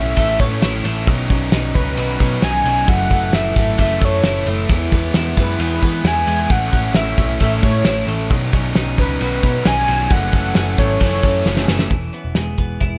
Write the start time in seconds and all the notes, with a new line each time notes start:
Already playing: B1 A2 A3 C#4 E4 E5
0.17 A1 A2 E3 A3 C#4 E4 E5, kick, ride
0.39 A2 A3 B3 C#4 E4 C#5, kick, ride, tambourine
0.51 C#4
0.62 A1 E3 A3 C#4 E4, snare, ride, tambourine
0.84 A1 A3 C#4 E4, ride, tambourine
1.07 B1 B2 D#3 F#3 C#4 D#4, kick, ride, tambourine
1.30 B1 F#3 C#4 D#4, kick, ride, tambourine
1.52 B1 D#4, snare, ride, tambourine
1.74 C#2 C#4 D#4 B4, kick, ride, tambourine
1.78 F#3
1.97 B1 B2 D#3 F#3 C#4 D#4 B4, ride, tambourine
2.20 B2 F#3 C#4 D#4, kick, ride, tambourine
2.41 B1 D#3 F#3 C#4 D#4 G#5, snare, ride, tambourine
2.64 B1 F#3 C#4 D#4, ride, tambourine
2.87 F#1 F#2 C#3 E3 A3 E4 F#5, kick, ride, tambourine
3.11 F#1 E3 A3 E4, kick, ride, tambourine
3.33 F#1 E4 E5, snare, ride, tambourine
3.56 G#1 E3 A3 E4, kick, ride, tambourine
3.78 F#1 F#2 C#3 E3 A3 E4 E5, kick, ride
4.01 F#2 E3 A3 E4 C#5, kick, ride, tambourine
4.23 F#1 C#3 E3 A3 E4, snare, ride, tambourine
4.46 F#1 E3 A3 E4, ride, tambourine
4.69 E2 E3 G#3 B3 E4, kick, ride, tambourine
4.92 E2 G#3 B3 E4, kick, ride
5.14 E2 E4, snare, ride, tambourine
5.37 F#2 G#3 B3 E4 B4, kick, ride, tambourine
5.59 E2 E3 G#3 B3 E4 B4, ride, tambourine
5.82 E3 G#3 B3 E4, kick, ride, tambourine
6.04 E2 E3 G#3 B3 E4 G#5, snare, ride, tambourine
6.27 E2 G#3, ride, tambourine
6.50 A1 A2 E3 A3 C#4 E4 F#5, kick, ride, tambourine
6.73 A1 A3 C#4 E4, kick, ride, tambourine
6.94 A1 E4 E5, snare, ride, tambourine
7.18 B1 A3 C#4 E4, kick, ride, tambourine
7.40 A1 A2 E3 A3 C#4 E4 E5, kick, ride, tambourine
7.63 A2 A3 C#4 E4 C#5, kick, ride, tambourine
7.84 A1 E3 A3 C#4 E4, snare, ride, tambourine
8.07 A1 A3, ride, tambourine
8.30 B1 B2 D#3 F#3 C#4 D#4, kick, ride, tambourine
8.53 B1 F#3 C#4 D#4, kick, ride, tambourine
8.75 B1 D#4, snare, ride, tambourine
8.98 C#2 F#3 C#4 D#4 B4, kick, ride, tambourine
9.21 B1 B2 D#3 F#3 C#4 D#4 B4, ride, tambourine
9.43 B2 F#3 C#4 D#4, kick, ride, tambourine
9.65 B1 D#3 F#3 C#4 D#4 G#5, snare, ride, tambourine
9.88 B1 F#3, ride, tambourine
10.10 F#1 F#2 C#3 E3 A3 C#4 F#5, kick, ride, tambourine
10.33 F#1 E3 A3 C#4, kick, ride, tambourine
10.55 F#1 C#4, snare, ride, tambourine
10.78 G#1 A3 C#5, kick, ride, tambourine
11.00 F#1 F#2 C#3 E3 A3 C#4 C#5, kick, ride
11.23 F#2 E3 A3 C#4, kick, ride, tambourine
11.45 F#1 C#3 E3 A3 C#4, snare, tambourine
11.57 snare
11.68 F#1 E3 A3 C#4, snare, tambourine
11.79 snare
11.90 E1 E3, kick, closed hi-hat
12.13 B3, closed hi-hat
12.25 E1
12.35 E1 G#3, snare, closed hi-hat
12.58 E1 B3, kick, closed hi-hat
12.80 E1 E4, kick, closed hi-hat